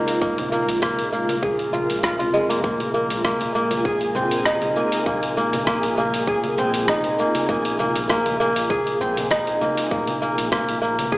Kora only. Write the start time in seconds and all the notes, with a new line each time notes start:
Already playing: A#3 C4 D#4 G#4
0.21 A#3
0.52 A#3
0.82 A#3
1.13 A#3
1.43 G#4
1.73 F4
2.03 F4
2.19 F4
2.34 G#3
2.50 A#3
2.64 A#3
2.94 A#3
3.25 A#3
3.55 A#3
3.85 G#4
4.15 C4
4.46 D#4
4.76 A#3
5.07 A#3
5.37 A#3
5.68 A#3
5.98 A#3
6.28 G#4
6.59 C4
6.89 D#4
7.20 A#3
7.49 A#3
7.80 A#3
8.10 A#3
8.40 A#3
8.70 G#4
9.01 C4
9.31 D#4
9.61 A#3
9.91 A#3
10.22 A#3
10.52 A#3
10.82 A#3
11.12 G#4